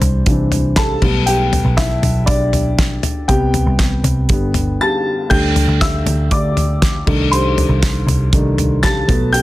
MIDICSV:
0, 0, Header, 1, 4, 480
1, 0, Start_track
1, 0, Key_signature, 1, "major"
1, 0, Tempo, 503778
1, 1214, Time_signature, 4, 2, 24, 8
1, 8976, End_track
2, 0, Start_track
2, 0, Title_t, "Upright piano"
2, 0, Program_c, 0, 0
2, 0, Control_c, 0, 64, 127
2, 0, Note_on_c, 0, 52, 57
2, 0, Note_on_c, 0, 60, 67
2, 0, Note_on_c, 0, 62, 61
2, 0, Note_on_c, 0, 72, 83
2, 0, Note_on_c, 0, 74, 76
2, 246, Note_off_c, 0, 60, 0
2, 257, Note_off_c, 0, 52, 0
2, 257, Note_on_c, 0, 52, 46
2, 261, Note_on_c, 0, 60, 47
2, 266, Note_off_c, 0, 62, 0
2, 266, Note_on_c, 0, 62, 52
2, 472, Note_off_c, 0, 52, 0
2, 474, Note_off_c, 0, 60, 0
2, 477, Note_off_c, 0, 62, 0
2, 735, Note_on_c, 0, 81, 102
2, 749, Note_on_c, 0, 69, 80
2, 776, Note_off_c, 0, 72, 0
2, 971, Note_on_c, 0, 55, 59
2, 972, Note_on_c, 0, 57, 51
2, 980, Note_on_c, 0, 59, 63
2, 988, Control_c, 0, 64, 0
2, 996, Note_off_c, 0, 74, 0
2, 1171, Control_c, 0, 64, 127
2, 1188, Note_off_c, 0, 69, 0
2, 1203, Note_on_c, 0, 79, 95
2, 1221, Note_on_c, 0, 67, 73
2, 1228, Note_off_c, 0, 81, 0
2, 1664, Note_off_c, 0, 67, 0
2, 1686, Note_on_c, 0, 76, 88
2, 1700, Note_on_c, 0, 64, 66
2, 1703, Note_off_c, 0, 79, 0
2, 2136, Note_off_c, 0, 76, 0
2, 2143, Note_off_c, 0, 64, 0
2, 2155, Note_on_c, 0, 74, 83
2, 2172, Note_on_c, 0, 62, 62
2, 2854, Note_off_c, 0, 55, 0
2, 2854, Note_off_c, 0, 57, 0
2, 2858, Note_off_c, 0, 59, 0
2, 3095, Note_off_c, 0, 62, 0
2, 3125, Note_on_c, 0, 79, 88
2, 3127, Note_on_c, 0, 48, 59
2, 3134, Note_on_c, 0, 55, 49
2, 3139, Note_on_c, 0, 59, 59
2, 3140, Note_on_c, 0, 67, 65
2, 3145, Control_c, 0, 64, 0
2, 3153, Note_off_c, 0, 74, 0
2, 3307, Control_c, 0, 64, 127
2, 3814, Note_off_c, 0, 48, 0
2, 3817, Note_off_c, 0, 55, 0
2, 3820, Note_off_c, 0, 59, 0
2, 4090, Note_on_c, 0, 50, 50
2, 4092, Note_on_c, 0, 55, 50
2, 4100, Note_on_c, 0, 59, 56
2, 4104, Control_c, 0, 64, 0
2, 4279, Control_c, 0, 64, 127
2, 4531, Note_off_c, 0, 79, 0
2, 4538, Note_off_c, 0, 67, 0
2, 4583, Note_on_c, 0, 93, 100
2, 4586, Note_on_c, 0, 81, 80
2, 5013, Note_off_c, 0, 50, 0
2, 5014, Note_off_c, 0, 55, 0
2, 5018, Note_off_c, 0, 59, 0
2, 5026, Note_off_c, 0, 81, 0
2, 5038, Note_on_c, 0, 55, 57
2, 5047, Note_on_c, 0, 57, 52
2, 5049, Note_on_c, 0, 91, 95
2, 5056, Note_on_c, 0, 62, 64
2, 5056, Note_on_c, 0, 79, 77
2, 5066, Control_c, 0, 64, 0
2, 5072, Note_off_c, 0, 93, 0
2, 5223, Control_c, 0, 64, 127
2, 5501, Note_off_c, 0, 79, 0
2, 5537, Note_on_c, 0, 88, 95
2, 5538, Note_on_c, 0, 76, 72
2, 5546, Note_off_c, 0, 91, 0
2, 5982, Note_off_c, 0, 76, 0
2, 5982, Note_off_c, 0, 88, 0
2, 6017, Note_on_c, 0, 86, 83
2, 6025, Note_on_c, 0, 74, 72
2, 6688, Note_off_c, 0, 55, 0
2, 6692, Note_off_c, 0, 57, 0
2, 6696, Note_off_c, 0, 62, 0
2, 6730, Note_on_c, 0, 51, 53
2, 6736, Note_on_c, 0, 57, 53
2, 6744, Control_c, 0, 64, 0
2, 6744, Note_on_c, 0, 62, 59
2, 6894, Control_c, 0, 64, 127
2, 6941, Note_off_c, 0, 74, 0
2, 6969, Note_on_c, 0, 84, 94
2, 6984, Note_on_c, 0, 72, 70
2, 7004, Note_off_c, 0, 86, 0
2, 7415, Note_off_c, 0, 51, 0
2, 7419, Note_off_c, 0, 57, 0
2, 7423, Note_off_c, 0, 62, 0
2, 7938, Note_on_c, 0, 51, 50
2, 7942, Note_on_c, 0, 57, 41
2, 7943, Note_on_c, 0, 62, 51
2, 8152, Note_off_c, 0, 51, 0
2, 8154, Note_off_c, 0, 57, 0
2, 8155, Note_off_c, 0, 62, 0
2, 8380, Note_off_c, 0, 72, 0
2, 8411, Note_on_c, 0, 93, 109
2, 8424, Note_on_c, 0, 81, 82
2, 8454, Note_off_c, 0, 84, 0
2, 8650, Note_on_c, 0, 54, 59
2, 8657, Note_on_c, 0, 57, 53
2, 8663, Note_on_c, 0, 59, 63
2, 8667, Control_c, 0, 64, 0
2, 8846, Control_c, 0, 64, 127
2, 8865, Note_off_c, 0, 81, 0
2, 8885, Note_on_c, 0, 91, 109
2, 8895, Note_on_c, 0, 79, 82
2, 8907, Note_off_c, 0, 93, 0
2, 8976, Note_off_c, 0, 54, 0
2, 8976, Note_off_c, 0, 57, 0
2, 8976, Note_off_c, 0, 59, 0
2, 8976, Note_off_c, 0, 79, 0
2, 8976, Note_off_c, 0, 91, 0
2, 8976, End_track
3, 0, Start_track
3, 0, Title_t, "Picked electric bass"
3, 0, Program_c, 1, 34
3, 12, Note_on_c, 1, 36, 92
3, 236, Note_off_c, 1, 36, 0
3, 249, Note_on_c, 1, 36, 89
3, 935, Note_off_c, 1, 36, 0
3, 972, Note_on_c, 1, 35, 98
3, 1535, Note_off_c, 1, 35, 0
3, 1568, Note_on_c, 1, 35, 98
3, 1906, Note_off_c, 1, 35, 0
3, 1928, Note_on_c, 1, 35, 99
3, 2154, Note_off_c, 1, 35, 0
3, 2165, Note_on_c, 1, 35, 96
3, 2853, Note_off_c, 1, 35, 0
3, 3130, Note_on_c, 1, 36, 104
3, 3466, Note_off_c, 1, 36, 0
3, 3490, Note_on_c, 1, 36, 95
3, 3826, Note_off_c, 1, 36, 0
3, 3846, Note_on_c, 1, 36, 104
3, 4093, Note_on_c, 1, 31, 92
3, 4108, Note_off_c, 1, 36, 0
3, 4549, Note_off_c, 1, 31, 0
3, 5055, Note_on_c, 1, 38, 105
3, 5389, Note_off_c, 1, 38, 0
3, 5413, Note_on_c, 1, 38, 97
3, 5748, Note_off_c, 1, 38, 0
3, 5772, Note_on_c, 1, 38, 92
3, 5996, Note_off_c, 1, 38, 0
3, 6012, Note_on_c, 1, 38, 98
3, 6697, Note_off_c, 1, 38, 0
3, 6738, Note_on_c, 1, 36, 99
3, 7297, Note_off_c, 1, 36, 0
3, 7327, Note_on_c, 1, 36, 94
3, 7665, Note_off_c, 1, 36, 0
3, 7684, Note_on_c, 1, 36, 92
3, 7911, Note_off_c, 1, 36, 0
3, 7935, Note_on_c, 1, 36, 100
3, 8618, Note_off_c, 1, 36, 0
3, 8653, Note_on_c, 1, 35, 99
3, 8976, Note_off_c, 1, 35, 0
3, 8976, End_track
4, 0, Start_track
4, 0, Title_t, "Drums"
4, 15, Note_on_c, 9, 42, 65
4, 16, Note_on_c, 9, 43, 60
4, 110, Note_off_c, 9, 42, 0
4, 111, Note_off_c, 9, 43, 0
4, 249, Note_on_c, 9, 42, 92
4, 252, Note_on_c, 9, 36, 119
4, 345, Note_off_c, 9, 42, 0
4, 347, Note_off_c, 9, 36, 0
4, 493, Note_on_c, 9, 43, 66
4, 496, Note_on_c, 9, 42, 68
4, 588, Note_off_c, 9, 43, 0
4, 591, Note_off_c, 9, 42, 0
4, 725, Note_on_c, 9, 38, 104
4, 732, Note_on_c, 9, 42, 82
4, 735, Note_on_c, 9, 36, 116
4, 735, Note_on_c, 9, 39, 95
4, 820, Note_off_c, 9, 38, 0
4, 827, Note_off_c, 9, 42, 0
4, 830, Note_off_c, 9, 36, 0
4, 831, Note_off_c, 9, 39, 0
4, 971, Note_on_c, 9, 43, 68
4, 973, Note_on_c, 9, 36, 105
4, 973, Note_on_c, 9, 49, 70
4, 1066, Note_off_c, 9, 43, 0
4, 1068, Note_off_c, 9, 49, 0
4, 1069, Note_off_c, 9, 36, 0
4, 1209, Note_on_c, 9, 42, 86
4, 1304, Note_off_c, 9, 42, 0
4, 1455, Note_on_c, 9, 43, 62
4, 1456, Note_on_c, 9, 42, 70
4, 1551, Note_off_c, 9, 43, 0
4, 1552, Note_off_c, 9, 42, 0
4, 1692, Note_on_c, 9, 36, 111
4, 1692, Note_on_c, 9, 38, 101
4, 1694, Note_on_c, 9, 42, 91
4, 1703, Note_on_c, 9, 39, 82
4, 1788, Note_off_c, 9, 36, 0
4, 1788, Note_off_c, 9, 38, 0
4, 1789, Note_off_c, 9, 42, 0
4, 1798, Note_off_c, 9, 39, 0
4, 1935, Note_on_c, 9, 42, 71
4, 1935, Note_on_c, 9, 43, 61
4, 2030, Note_off_c, 9, 42, 0
4, 2031, Note_off_c, 9, 43, 0
4, 2166, Note_on_c, 9, 42, 95
4, 2169, Note_on_c, 9, 36, 117
4, 2261, Note_off_c, 9, 42, 0
4, 2265, Note_off_c, 9, 36, 0
4, 2412, Note_on_c, 9, 43, 67
4, 2415, Note_on_c, 9, 42, 69
4, 2507, Note_off_c, 9, 43, 0
4, 2511, Note_off_c, 9, 42, 0
4, 2654, Note_on_c, 9, 38, 115
4, 2655, Note_on_c, 9, 36, 113
4, 2661, Note_on_c, 9, 42, 86
4, 2664, Note_on_c, 9, 39, 84
4, 2749, Note_off_c, 9, 38, 0
4, 2750, Note_off_c, 9, 36, 0
4, 2756, Note_off_c, 9, 42, 0
4, 2759, Note_off_c, 9, 39, 0
4, 2889, Note_on_c, 9, 43, 69
4, 2891, Note_on_c, 9, 42, 78
4, 2984, Note_off_c, 9, 43, 0
4, 2986, Note_off_c, 9, 42, 0
4, 3132, Note_on_c, 9, 42, 92
4, 3133, Note_on_c, 9, 36, 111
4, 3228, Note_off_c, 9, 36, 0
4, 3228, Note_off_c, 9, 42, 0
4, 3372, Note_on_c, 9, 43, 65
4, 3373, Note_on_c, 9, 42, 66
4, 3467, Note_off_c, 9, 43, 0
4, 3468, Note_off_c, 9, 42, 0
4, 3610, Note_on_c, 9, 38, 89
4, 3611, Note_on_c, 9, 42, 88
4, 3613, Note_on_c, 9, 36, 106
4, 3620, Note_on_c, 9, 39, 72
4, 3705, Note_off_c, 9, 38, 0
4, 3706, Note_off_c, 9, 42, 0
4, 3708, Note_off_c, 9, 36, 0
4, 3715, Note_off_c, 9, 39, 0
4, 3852, Note_on_c, 9, 42, 69
4, 3852, Note_on_c, 9, 43, 58
4, 3947, Note_off_c, 9, 42, 0
4, 3947, Note_off_c, 9, 43, 0
4, 4086, Note_on_c, 9, 42, 89
4, 4093, Note_on_c, 9, 36, 118
4, 4182, Note_off_c, 9, 42, 0
4, 4188, Note_off_c, 9, 36, 0
4, 4328, Note_on_c, 9, 43, 69
4, 4332, Note_on_c, 9, 42, 74
4, 4424, Note_off_c, 9, 43, 0
4, 4427, Note_off_c, 9, 42, 0
4, 5057, Note_on_c, 9, 36, 108
4, 5057, Note_on_c, 9, 57, 97
4, 5152, Note_off_c, 9, 36, 0
4, 5152, Note_off_c, 9, 57, 0
4, 5298, Note_on_c, 9, 43, 63
4, 5299, Note_on_c, 9, 42, 66
4, 5393, Note_off_c, 9, 43, 0
4, 5394, Note_off_c, 9, 42, 0
4, 5537, Note_on_c, 9, 36, 116
4, 5540, Note_on_c, 9, 38, 94
4, 5541, Note_on_c, 9, 42, 89
4, 5550, Note_on_c, 9, 39, 78
4, 5632, Note_off_c, 9, 36, 0
4, 5635, Note_off_c, 9, 38, 0
4, 5636, Note_off_c, 9, 42, 0
4, 5645, Note_off_c, 9, 39, 0
4, 5779, Note_on_c, 9, 42, 69
4, 5779, Note_on_c, 9, 43, 64
4, 5874, Note_off_c, 9, 42, 0
4, 5875, Note_off_c, 9, 43, 0
4, 6013, Note_on_c, 9, 42, 97
4, 6015, Note_on_c, 9, 36, 113
4, 6109, Note_off_c, 9, 42, 0
4, 6110, Note_off_c, 9, 36, 0
4, 6259, Note_on_c, 9, 43, 68
4, 6263, Note_on_c, 9, 42, 73
4, 6355, Note_off_c, 9, 43, 0
4, 6358, Note_off_c, 9, 42, 0
4, 6500, Note_on_c, 9, 38, 109
4, 6501, Note_on_c, 9, 36, 113
4, 6507, Note_on_c, 9, 42, 84
4, 6510, Note_on_c, 9, 39, 92
4, 6595, Note_off_c, 9, 38, 0
4, 6596, Note_off_c, 9, 36, 0
4, 6602, Note_off_c, 9, 42, 0
4, 6605, Note_off_c, 9, 39, 0
4, 6739, Note_on_c, 9, 36, 119
4, 6739, Note_on_c, 9, 43, 73
4, 6740, Note_on_c, 9, 49, 76
4, 6834, Note_off_c, 9, 36, 0
4, 6834, Note_off_c, 9, 43, 0
4, 6836, Note_off_c, 9, 49, 0
4, 6982, Note_on_c, 9, 42, 93
4, 7077, Note_off_c, 9, 42, 0
4, 7221, Note_on_c, 9, 43, 68
4, 7222, Note_on_c, 9, 42, 67
4, 7317, Note_off_c, 9, 43, 0
4, 7318, Note_off_c, 9, 42, 0
4, 7456, Note_on_c, 9, 36, 107
4, 7457, Note_on_c, 9, 38, 102
4, 7458, Note_on_c, 9, 42, 98
4, 7467, Note_on_c, 9, 39, 83
4, 7552, Note_off_c, 9, 36, 0
4, 7552, Note_off_c, 9, 38, 0
4, 7553, Note_off_c, 9, 42, 0
4, 7562, Note_off_c, 9, 39, 0
4, 7703, Note_on_c, 9, 42, 66
4, 7703, Note_on_c, 9, 43, 59
4, 7798, Note_off_c, 9, 42, 0
4, 7799, Note_off_c, 9, 43, 0
4, 7935, Note_on_c, 9, 36, 123
4, 7936, Note_on_c, 9, 42, 89
4, 8030, Note_off_c, 9, 36, 0
4, 8032, Note_off_c, 9, 42, 0
4, 8179, Note_on_c, 9, 43, 64
4, 8182, Note_on_c, 9, 42, 73
4, 8274, Note_off_c, 9, 43, 0
4, 8278, Note_off_c, 9, 42, 0
4, 8416, Note_on_c, 9, 38, 112
4, 8420, Note_on_c, 9, 36, 115
4, 8423, Note_on_c, 9, 42, 89
4, 8427, Note_on_c, 9, 39, 96
4, 8512, Note_off_c, 9, 38, 0
4, 8515, Note_off_c, 9, 36, 0
4, 8519, Note_off_c, 9, 42, 0
4, 8522, Note_off_c, 9, 39, 0
4, 8658, Note_on_c, 9, 36, 116
4, 8663, Note_on_c, 9, 43, 69
4, 8665, Note_on_c, 9, 42, 82
4, 8754, Note_off_c, 9, 36, 0
4, 8758, Note_off_c, 9, 43, 0
4, 8760, Note_off_c, 9, 42, 0
4, 8901, Note_on_c, 9, 42, 93
4, 8976, Note_off_c, 9, 42, 0
4, 8976, End_track
0, 0, End_of_file